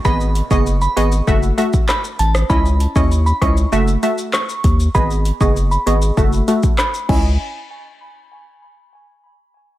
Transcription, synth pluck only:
\new Staff \with { instrumentName = "Synth pluck" } { \time 4/4 \key fis \dorian \tempo 4 = 98 <b gis' dis''>16 r8 <b gis' dis''>16 r8 <b gis' dis''>16 r16 <a fis' e''>8 <a fis' e''>16 r4 r16 | <cis' e' dis''>16 r8 <cis' e' dis''>16 r8 <cis' e' dis''>16 r16 <a fis' e''>8 <a fis' e''>16 r4 r16 | <b gis' dis''>16 r8 <b gis' dis''>16 r8 <b gis' dis''>16 r16 <a fis' e''>8 <a fis' e''>16 r8. <cis' e' dis''>8 | r1 | }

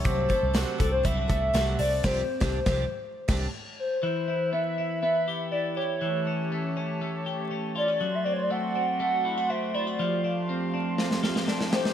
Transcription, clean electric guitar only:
\new Staff \with { instrumentName = "Clean electric guitar" } { \time 4/4 \key c \major \tempo 4 = 121 a8 a8 fis'8 c'8 e'16 fis'16 a8 fis'8 c'8 | r1 | e8 e'8 b8 e'8 b8 g'8 e'8 g'8 | e8 cis'8 a8 cis'8 a8 g'8 cis'8 f'16 g'16 |
fis8 c'8 a8 c'8 a8 e'16 fis'16 c'8 e'16 fis'16 | f8 d'8 c'8 d'8 c'8 f'16 g'16 d'8 g'8 | }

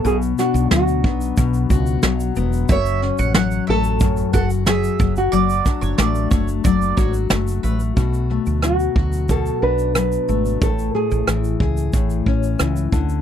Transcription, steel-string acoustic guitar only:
\new Staff \with { instrumentName = "Steel-string acoustic guitar" } { \time 4/4 \key b \dorian \tempo 4 = 91 b,8 d'8 fis8 b8 b,8 fis'8 fis8 b8 | fis,8 cis'8 fis8 a8 fis,8 fis'8 fis8 fis8 | fis8 d'8 a8 a8 fis8 fis'8 a8 a8 | <b, fis'>8 a8 fis8 fis'8 b,8 d'8 fis8 a8 |
a,8 a8 e8 gis'8 a,8 cis'8 e8 d8 | }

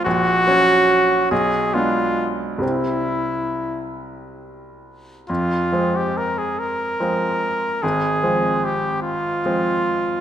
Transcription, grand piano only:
\new Staff \with { instrumentName = "Grand piano" } { \clef bass \time 6/8 \key f \minor \tempo 4. = 47 bes,,8 <ges des'>4 b,,8 <gis b d'>4 | <c, g c'>2. | f,8 <f aes c'>4. <f aes c'>4 | aes,,8 <f aes c'>4. <f aes c'>4 | }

